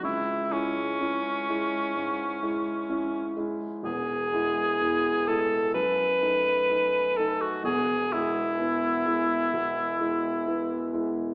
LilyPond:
<<
  \new Staff \with { instrumentName = "Cor anglais" } { \time 4/4 \key e \major \tempo 4 = 64 e'8 cis'2. r8 | gis'4. a'8 b'4. a'16 fis'16 | gis'8 e'2. r8 | }
  \new Staff \with { instrumentName = "Grand piano" } { \time 4/4 \key e \major cis,8 <gis e'>8 <cis' e'>8 <gis e'>8 gis,8 <gis e'>8 <cis' e'>8 <gis e'>8 | <e,, e,>8 <gis e'>8 <b e'>8 <gis e'>8 fis,8 <a dis'>8 <a dis'>8 <a dis'>8 | <e,, e,>8 <gis e'>8 <b e'>8 <gis e'>8 b,8 <gis e'>8 <b e'>8 <gis e'>8 | }
>>